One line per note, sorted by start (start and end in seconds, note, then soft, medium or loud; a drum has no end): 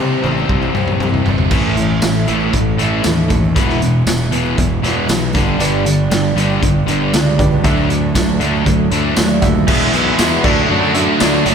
0.00 0.18 C3 medium
0.00 0.24 C3 medium
0.00 1.24 C3 medium
0.00 0.23 E3 medium
0.00 1.24 E3 medium
0.00 0.24 G3 medium
0.00 1.25 G3 medium
0.00 0.24 C4 medium
0.00 1.24 C4 medium
0.00 1.23 G4 loud
0.00 0.25 G4 medium
0.24 0.44 A1 medium
0.24 1.51 C3 medium
0.24 0.37 E3 medium
0.24 0.37 G3 medium
0.24 0.38 C4 medium
0.24 0.36 G4 medium
0.24 high tom medium
0.38 0.63 G3 soft
0.38 0.62 C4 soft
0.38 0.61 G4 soft
0.49 0.69 C2 medium
0.49 kick medium
0.49 mid tom medium
0.62 0.75 G3 soft
0.62 0.75 C4 soft
0.62 0.75 G4 medium
0.62 mid tom medium
0.75 0.95 C2 medium
0.75 0.88 E3 medium
0.75 0.88 G3 medium
0.75 0.88 C4 medium
0.75 0.88 G4 medium
0.75 mid tom medium
0.88 1.01 G3 soft
0.88 1.02 C4 soft
0.88 1.01 G4 soft
0.88 mid tom medium
1.00 1.20 C2 medium
1.00 1.27 C3 medium
1.00 1.25 E3 medium
1.00 1.26 G3 medium
1.00 1.27 C4 medium
1.00 1.27 G4 medium
1.00 mid tom medium
1.14 floor tom medium
1.26 1.51 G1 medium
1.26 1.50 C3 medium
1.26 1.39 E3 medium
1.26 1.39 G3 medium
1.26 1.39 C4 medium
1.26 1.38 G4 medium
1.26 floor tom medium
1.38 1.53 G3 soft
1.38 1.52 C4 soft
1.38 1.52 G4 soft
1.38 floor tom medium
1.51 1.98 A1 medium
1.51 1.77 A2 medium
1.51 1.76 E3 medium
1.51 1.78 A3 medium
1.51 1.78 C#4 medium
1.51 1.78 E4 medium
1.51 kick loud
1.51 crash loud
1.77 2.00 A2 medium
1.77 2.02 E3 medium
1.77 2.02 A3 medium
1.77 2.03 C#4 medium
1.77 2.03 E4 medium
1.77 closed hi-hat medium
2.02 2.26 A1 medium
2.02 2.28 A2 medium
2.02 2.26 E3 medium
2.02 2.27 A3 medium
2.02 2.27 C#4 medium
2.02 2.28 E4 loud
2.02 snare loud
2.02 closed hi-hat medium
2.02 tambourine loud
2.27 2.52 A1 medium
2.27 2.52 A2 medium
2.27 2.40 E3 medium
2.27 2.41 A3 medium
2.27 2.39 C#4 medium
2.27 2.38 E4 medium
2.27 closed hi-hat medium
2.40 2.79 A3 soft
2.40 2.79 C#4 medium
2.40 2.79 E4 medium
2.53 2.77 A1 medium
2.53 2.77 A2 medium
2.53 2.77 E3 medium
2.53 kick medium
2.53 closed hi-hat medium
2.78 3.03 A1 medium
2.78 3.03 A2 medium
2.78 3.03 E3 medium
2.78 3.04 A3 medium
2.78 3.04 C#4 medium
2.78 3.04 E4 medium
2.78 closed hi-hat medium
3.03 3.52 D#2 medium
3.03 3.30 A2 medium
3.03 3.28 E3 medium
3.03 3.29 A3 medium
3.03 3.30 C#4 medium
3.03 3.31 E4 medium
3.03 snare medium
3.03 closed hi-hat medium
3.03 tambourine loud
3.29 3.53 A2 medium
3.29 3.43 E3 medium
3.29 3.43 A3 medium
3.29 3.44 C#4 medium
3.29 3.43 E4 medium
3.29 kick medium
3.29 closed hi-hat medium
3.44 3.57 A3 soft
3.44 3.57 C#4 soft
3.44 3.56 E4 medium
3.56 4.03 E1 medium
3.56 3.82 E2 medium
3.56 3.82 B2 medium
3.56 3.80 E3 medium
3.56 3.81 G#3 medium
3.56 3.82 B3 medium
3.56 3.82 E4 medium
3.56 kick loud
3.56 closed hi-hat medium
3.69 snare soft
3.81 4.04 E2 medium
3.81 4.05 B2 medium
3.81 4.07 E3 medium
3.81 4.07 G#3 medium
3.81 4.07 B3 medium
3.81 4.08 E4 medium
3.81 closed hi-hat medium
4.07 4.30 E1 medium
4.07 4.33 E2 medium
4.07 4.33 B2 medium
4.07 4.31 E3 medium
4.07 4.32 G#3 medium
4.07 4.32 B3 medium
4.07 4.32 E4 medium
4.07 snare loud
4.07 closed hi-hat medium
4.07 tambourine loud
4.31 4.56 E1 medium
4.31 4.56 E2 medium
4.31 4.56 B2 medium
4.31 4.45 E3 medium
4.31 4.45 G#3 medium
4.31 4.44 B3 medium
4.31 4.43 E4 medium
4.31 closed hi-hat medium
4.45 4.82 E3 soft
4.45 4.84 G#3 soft
4.45 4.84 B3 medium
4.45 4.83 E4 medium
4.57 4.82 E1 medium
4.57 4.81 E2 medium
4.57 4.81 B2 medium
4.57 kick medium
4.57 closed hi-hat medium
4.82 5.07 E1 medium
4.82 5.07 E2 medium
4.82 5.07 B2 medium
4.82 5.08 E3 medium
4.82 5.09 G#3 medium
4.82 5.08 B3 medium
4.82 5.09 E4 medium
4.82 snare soft
4.82 closed hi-hat medium
5.08 5.36 B1 medium
5.08 5.34 E2 medium
5.08 5.35 B2 medium
5.08 5.33 E3 medium
5.08 5.33 G#3 medium
5.08 5.33 B3 medium
5.08 5.35 E4 medium
5.08 snare loud
5.08 closed hi-hat medium
5.08 tambourine medium
5.33 5.58 G1 medium
5.33 5.58 G2 medium
5.33 5.58 D3 medium
5.33 5.47 G3 medium
5.33 5.46 B3 medium
5.33 5.46 D4 medium
5.33 5.45 G4 medium
5.33 kick medium
5.33 closed hi-hat medium
5.47 5.60 G3 soft
5.47 5.59 B3 soft
5.47 5.60 D4 medium
5.47 5.60 G4 medium
5.60 6.07 G1 medium
5.60 5.86 G2 medium
5.60 5.86 D3 medium
5.60 5.84 G3 medium
5.60 5.85 B3 medium
5.60 5.86 D4 medium
5.60 6.42 G4 medium
5.60 5.87 G4 medium
5.60 6.42 B4 medium
5.60 6.42 D5 medium
5.60 closed hi-hat medium
5.85 6.09 G2 medium
5.85 6.09 D3 medium
5.85 6.11 G3 medium
5.85 6.12 B3 medium
5.85 6.12 D4 medium
5.85 6.12 G4 medium
5.85 closed hi-hat medium
6.11 6.35 G1 medium
6.11 6.37 G2 medium
6.11 6.38 D3 medium
6.11 6.35 G3 medium
6.11 6.36 B3 medium
6.11 6.38 D4 medium
6.11 6.38 G4 loud
6.11 snare medium
6.11 closed hi-hat medium
6.11 tambourine loud
6.36 6.60 G1 medium
6.36 6.61 G2 medium
6.36 6.61 D3 medium
6.36 6.50 G3 medium
6.36 6.50 B3 medium
6.36 6.51 D4 medium
6.36 6.49 G4 medium
6.36 closed hi-hat medium
6.50 6.88 G3 soft
6.50 6.88 B3 soft
6.50 6.89 D4 medium
6.50 6.88 G4 medium
6.63 6.86 G1 loud
6.63 6.86 G2 medium
6.63 6.86 D3 medium
6.63 kick medium
6.63 closed hi-hat medium
6.88 7.11 G1 medium
6.88 7.13 G2 medium
6.88 7.13 D3 loud
6.88 7.13 G3 medium
6.88 7.14 B3 medium
6.88 7.14 D4 medium
6.88 7.14 G4 medium
6.88 closed hi-hat medium
7.13 7.64 C#2 medium
7.13 7.39 G2 medium
7.13 7.39 D3 medium
7.13 7.38 G3 medium
7.13 7.39 B3 medium
7.13 7.40 D4 medium
7.13 7.40 G4 medium
7.13 snare loud
7.13 closed hi-hat medium
7.13 tambourine loud
7.39 7.62 G2 medium
7.39 7.62 D3 medium
7.39 7.52 G3 medium
7.39 7.51 B3 medium
7.39 7.51 D4 medium
7.39 7.59 G4 medium
7.39 7.50 G4 medium
7.39 7.59 B4 medium
7.39 7.59 D5 medium
7.39 kick medium
7.39 closed hi-hat medium
7.51 7.65 G3 soft
7.51 7.65 B3 soft
7.51 7.65 D4 soft
7.51 7.64 G4 medium
7.63 8.11 D2 medium
7.63 7.90 D3 medium
7.63 7.89 F#3 medium
7.63 7.89 A3 medium
7.63 7.90 D4 medium
7.63 7.91 E4 medium
7.63 8.45 F#4 medium
7.63 8.46 D5 medium
7.63 8.46 E5 medium
7.63 kick loud
7.63 closed hi-hat medium
7.90 8.13 D3 medium
7.90 8.15 F#3 medium
7.90 8.16 A3 medium
7.90 8.16 D4 medium
7.90 8.17 E4 medium
7.90 closed hi-hat medium
8.15 8.39 D2 medium
8.15 8.41 D3 medium
8.15 8.41 F#3 medium
8.15 8.42 A3 medium
8.15 8.42 D4 medium
8.15 8.42 E4 medium
8.15 kick medium
8.15 snare loud
8.15 closed hi-hat medium
8.15 tambourine loud
8.40 8.65 D2 medium
8.40 8.65 D3 medium
8.40 8.54 F#3 medium
8.40 8.55 A3 medium
8.40 8.55 D4 medium
8.40 closed hi-hat medium
8.45 8.54 E4 medium
8.55 8.92 A3 soft
8.55 8.93 D4 medium
8.55 8.93 E4 medium
8.66 8.90 D2 medium
8.66 8.89 D3 medium
8.66 8.90 F#3 medium
8.66 8.89 A3 medium
8.66 kick medium
8.66 closed hi-hat medium
8.91 9.15 D2 medium
8.91 9.16 D3 loud
8.91 9.18 F#3 medium
8.91 9.18 A3 medium
8.91 9.18 D4 medium
8.91 9.19 E4 medium
8.91 closed hi-hat medium
9.16 9.64 D#2 medium
9.16 9.43 D3 medium
9.16 9.42 F#3 medium
9.16 9.43 A3 medium
9.16 9.44 D4 medium
9.16 9.44 E4 loud
9.16 snare loud
9.16 closed hi-hat loud
9.16 tambourine loud
9.41 9.66 D3 medium
9.41 9.56 F#3 medium
9.41 9.56 A3 medium
9.41 9.62 F#4 medium
9.41 9.62 D5 medium
9.41 9.63 E5 loud
9.41 kick medium
9.41 closed hi-hat medium
9.45 9.57 D4 medium
9.45 9.56 E4 medium
9.57 9.69 A3 soft
9.57 9.70 D4 soft
9.57 9.69 E4 medium
9.67 9.86 E1 medium
9.67 9.94 E2 medium
9.67 9.94 B2 medium
9.67 9.93 E3 medium
9.67 9.94 G#3 loud
9.67 9.94 B3 medium
9.67 10.44 E4 medium
9.67 9.95 E4 medium
9.67 10.44 G#4 medium
9.67 9.95 G#4 medium
9.67 10.44 B4 medium
9.67 10.45 E5 medium
9.67 kick loud
9.67 crash loud
9.93 10.11 B1 medium
9.93 10.16 E2 medium
9.93 10.17 B2 medium
9.93 10.07 E3 medium
9.93 10.18 G#3 medium
9.93 10.07 B3 medium
9.93 10.07 E4 medium
9.93 10.06 G#4 medium
9.93 closed hi-hat medium
10.07 10.20 E3 soft
10.07 10.20 B3 soft
10.07 10.20 E4 medium
10.07 10.20 G#4 medium
10.19 10.37 E2 medium
10.19 10.45 E2 medium
10.19 10.46 B2 medium
10.19 10.44 E3 medium
10.19 10.43 G#3 loud
10.19 10.46 B3 medium
10.19 10.46 E4 medium
10.19 10.46 G#4 loud
10.19 snare loud
10.19 closed hi-hat loud
10.19 tambourine loud
10.43 10.62 D2 medium
10.43 10.68 D3 medium
10.43 10.57 F#3 medium
10.43 10.58 A3 medium
10.43 10.85 D4 medium
10.43 10.58 D4 medium
10.43 10.85 F#4 medium
10.43 10.85 A4 medium
10.43 10.85 D5 loud
10.43 kick medium
10.43 crash medium
10.48 10.57 F#4 medium
10.58 10.84 A3 medium
10.58 10.84 D4 medium
10.58 10.82 F#4 medium
10.69 11.05 F#2 medium
10.69 10.93 D3 medium
10.69 10.95 F#3 medium
10.69 10.93 A3 medium
10.69 10.94 D4 medium
10.69 10.94 F#4 loud
10.83 11.22 A3 soft
10.83 11.22 D4 medium
10.83 11.21 F#4 medium
10.94 11.19 D3 medium
10.94 11.20 F#3 medium
10.94 11.20 A3 medium
10.94 11.55 D4 medium
10.94 11.21 D4 loud
10.94 11.55 F#4 medium
10.94 11.21 F#4 loud
10.94 11.55 A4 medium
10.94 11.55 E5 medium
10.94 closed hi-hat medium
11.20 11.39 D2 medium
11.20 11.47 D3 medium
11.20 11.45 F#3 medium
11.20 11.46 A3 medium
11.20 11.46 D4 medium
11.20 11.47 F#4 medium
11.20 snare loud
11.20 closed hi-hat medium
11.20 tambourine loud
11.46 11.55 F#1 medium
11.46 11.55 D3 medium
11.46 11.55 F#3 medium
11.46 11.55 A3 medium
11.46 11.55 D4 medium
11.46 11.55 F#4 medium
11.46 closed hi-hat medium